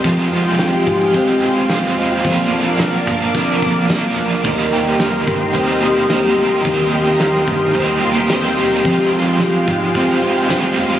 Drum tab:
RD |xxxxxxxx|xxxxxxxx|xxxxxxxx|xxxxxxxx|
TB |--x---x-|--x---x-|--x---x-|--x---x-|
SD |--o---o-|--o---o-|--o---o-|--o---o-|
BD |o--oo---|o--ooo--|o--oo---|o--oo---|

RD |xxxxxxxx|
TB |--x---x-|
SD |--o---o-|
BD |o--oo---|